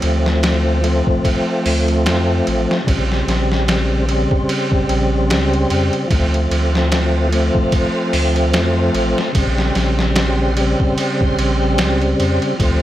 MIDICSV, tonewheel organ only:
0, 0, Header, 1, 2, 480
1, 0, Start_track
1, 0, Tempo, 810811
1, 1695, Time_signature, 4, 2, 24, 8
1, 7589, End_track
2, 0, Start_track
2, 0, Title_t, "Tonewheel organ"
2, 0, Program_c, 0, 16
2, 0, Note_on_c, 0, 53, 64
2, 0, Note_on_c, 0, 57, 60
2, 0, Note_on_c, 0, 60, 68
2, 464, Note_off_c, 0, 53, 0
2, 471, Note_off_c, 0, 57, 0
2, 479, Note_on_c, 0, 53, 90
2, 480, Note_off_c, 0, 60, 0
2, 494, Note_on_c, 0, 57, 75
2, 513, Note_on_c, 0, 60, 97
2, 1662, Note_off_c, 0, 53, 0
2, 1669, Note_off_c, 0, 57, 0
2, 1679, Note_off_c, 0, 60, 0
2, 1681, Note_on_c, 0, 49, 59
2, 1697, Note_on_c, 0, 55, 56
2, 1714, Note_on_c, 0, 60, 66
2, 2383, Note_off_c, 0, 49, 0
2, 2391, Note_off_c, 0, 55, 0
2, 2399, Note_off_c, 0, 60, 0
2, 2401, Note_on_c, 0, 49, 88
2, 2417, Note_on_c, 0, 55, 79
2, 2435, Note_on_c, 0, 60, 97
2, 3583, Note_off_c, 0, 49, 0
2, 3591, Note_off_c, 0, 55, 0
2, 3596, Note_on_c, 0, 53, 63
2, 3600, Note_off_c, 0, 60, 0
2, 3614, Note_on_c, 0, 57, 57
2, 3630, Note_on_c, 0, 60, 70
2, 4301, Note_off_c, 0, 53, 0
2, 4310, Note_off_c, 0, 57, 0
2, 4314, Note_on_c, 0, 53, 88
2, 4318, Note_off_c, 0, 60, 0
2, 4333, Note_on_c, 0, 57, 81
2, 4349, Note_on_c, 0, 60, 99
2, 5499, Note_off_c, 0, 53, 0
2, 5509, Note_off_c, 0, 57, 0
2, 5517, Note_off_c, 0, 60, 0
2, 5520, Note_on_c, 0, 49, 65
2, 5537, Note_on_c, 0, 55, 62
2, 5554, Note_on_c, 0, 60, 72
2, 6222, Note_off_c, 0, 49, 0
2, 6231, Note_off_c, 0, 55, 0
2, 6239, Note_on_c, 0, 49, 85
2, 6240, Note_off_c, 0, 60, 0
2, 6256, Note_on_c, 0, 55, 80
2, 6277, Note_on_c, 0, 60, 97
2, 7422, Note_off_c, 0, 49, 0
2, 7430, Note_off_c, 0, 55, 0
2, 7441, Note_off_c, 0, 60, 0
2, 7444, Note_on_c, 0, 53, 65
2, 7462, Note_on_c, 0, 57, 62
2, 7478, Note_on_c, 0, 60, 70
2, 7589, Note_off_c, 0, 53, 0
2, 7589, Note_off_c, 0, 57, 0
2, 7589, Note_off_c, 0, 60, 0
2, 7589, End_track
0, 0, End_of_file